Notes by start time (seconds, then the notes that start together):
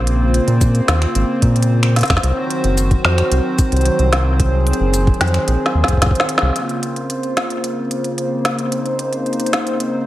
Already playing: A#1 C#3 A#3 C4 F4 C5
0.07 closed hi-hat
0.34 closed hi-hat
0.48 A#2, closed hi-hat
0.61 kick, closed hi-hat, cabasa
0.75 closed hi-hat
0.88 D#2, finger snap, snare, closed hi-hat
1.02 finger snap, closed hi-hat
1.15 G#1, closed hi-hat
1.42 A#2, kick, closed hi-hat
1.56 closed hi-hat
1.63 closed hi-hat
1.83 finger snap, closed hi-hat
1.96 snare, closed hi-hat
1.99 closed hi-hat
2.01 snare, closed hi-hat
2.05 closed hi-hat
2.08 F2, finger snap, kick, snare, closed hi-hat
2.10 closed hi-hat
2.17 snare
2.23 C2 D#3 F#3 F#4 C5, closed hi-hat
2.50 closed hi-hat
2.64 F#1, closed hi-hat
2.78 closed hi-hat, cabasa
2.91 kick, closed hi-hat
3.04 F2, finger snap, snare
3.18 finger snap, closed hi-hat
3.31 C2, closed hi-hat
3.58 kick, closed hi-hat, cabasa
3.72 C2, closed hi-hat
3.77 closed hi-hat
3.81 closed hi-hat
3.85 closed hi-hat
3.99 C2, closed hi-hat
4.13 snare, closed hi-hat
4.39 G#4, kick, closed hi-hat
4.67 closed hi-hat
4.73 closed hi-hat
4.80 F#1
4.94 closed hi-hat, cabasa
5.07 kick, closed hi-hat
5.14 closed hi-hat
5.21 F2, finger snap, snare, closed hi-hat
5.28 closed hi-hat
5.34 finger snap, closed hi-hat
5.48 A#1, closed hi-hat
5.66 snare
5.75 D#2
5.84 snare
5.88 kick, closed hi-hat
5.93 kick
5.97 kick
6.02 kick, snare, closed hi-hat
6.06 kick
6.11 kick
6.15 closed hi-hat
6.20 snare
6.29 closed hi-hat
6.38 snare
6.42 C2
6.56 C#3 A#3 C4 F4 C5, closed hi-hat
6.69 closed hi-hat
6.83 closed hi-hat
6.96 closed hi-hat
7.10 closed hi-hat
7.23 closed hi-hat
7.37 snare, closed hi-hat
7.50 closed hi-hat
7.64 closed hi-hat
7.91 closed hi-hat
8.04 closed hi-hat
8.18 closed hi-hat
8.45 snare, closed hi-hat
8.59 closed hi-hat
8.72 D#4, closed hi-hat
8.86 closed hi-hat
8.99 closed hi-hat
9.13 closed hi-hat
9.26 closed hi-hat
9.33 closed hi-hat
9.40 closed hi-hat
9.46 closed hi-hat
9.53 snare, closed hi-hat
9.67 closed hi-hat
9.80 closed hi-hat